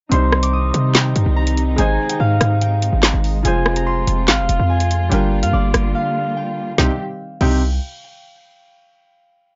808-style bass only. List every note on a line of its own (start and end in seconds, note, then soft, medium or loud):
0.12 0.72 C2 loud
0.74 1.14 C3 loud
1.16 1.26 G2 loud
1.26 1.76 C2 loud
1.78 1.98 G#1 loud
2.20 2.40 G#2 loud
2.41 2.91 G#2 loud
2.93 3.13 G#1 loud
3.14 3.44 G#1 loud
3.45 4.05 F1 loud
4.07 4.30 F1 loud
4.28 4.40 G#1 loud
4.39 4.49 F1 loud
4.49 4.59 F1 loud
4.59 5.10 F2 loud
5.12 5.44 G1 loud
5.43 5.53 G2 loud
5.53 5.73 G1 loud
5.74 5.94 G1 loud
6.78 6.90 C2 loud
7.41 7.80 C2 loud